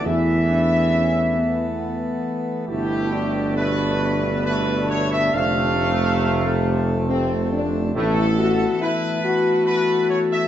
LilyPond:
<<
  \new Staff \with { instrumentName = "Trumpet section" } { \time 3/4 \key g \lydian \tempo 4 = 68 e''2~ e''8 r8 | g'4 b'4 b'8 cis''16 e''16 | f''2~ f''8 r8 | a'4 b'4 b'8 cis''16 e''16 | }
  \new Staff \with { instrumentName = "French horn section" } { \time 3/4 \key g \lydian e'8 d'8 cis'8 b4. | e'8 d'2~ d'8~ | d'4 a4 c'8 d'8 | e'8 fis'8 e'8 fis'4. | }
  \new Staff \with { instrumentName = "Pipe organ" } { \time 3/4 \key g \lydian <a a'>2. | <a a'>2.~ | <a a'>2. | <a a'>2. | }
  \new Staff \with { instrumentName = "Pipe organ" } { \clef bass \time 3/4 \key g \lydian <e b>2. | <d b>2. | <c c'>2. | <e b>2. | }
  \new Staff \with { instrumentName = "Trombone section" } { \clef bass \time 3/4 \key g \lydian e2~ e8 r8 | <b, a>4 <b, a>4 <b, a>4 | <c a>2. | <a, a>8 r2 r8 | }
  \new Staff \with { instrumentName = "Tuba" } { \clef bass \time 3/4 \key g \lydian e,2~ e,8 r8 | g,,2. | f,,2. | a,,4 r2 | }
>>